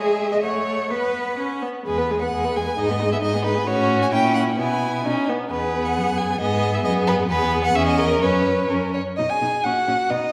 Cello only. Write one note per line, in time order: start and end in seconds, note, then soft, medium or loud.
0.00 0.30 G#4 medium
0.33 0.37 D#5 medium
0.43 0.92 C#5 medium
0.90 1.39 B4 medium
1.87 2.28 E2 medium
2.33 2.73 E2 medium
2.78 3.18 G#2 medium
3.23 3.62 G#2 medium
3.68 4.10 A2 medium
4.13 4.60 A#2 medium
4.59 5.05 B2 medium
5.05 5.13 B2 medium
5.51 5.99 E2 medium
5.97 6.41 F#2 medium
6.41 6.84 G#2 medium
6.85 7.31 F#2 medium
7.29 7.74 E2 medium
7.75 8.21 E2 medium
8.22 8.69 F#2 medium
8.71 8.97 F#2 soft
9.19 9.27 B2 soft
9.42 9.50 B2 soft
9.65 9.73 A#2 soft
9.88 9.96 A#2 soft
10.10 10.18 B2 soft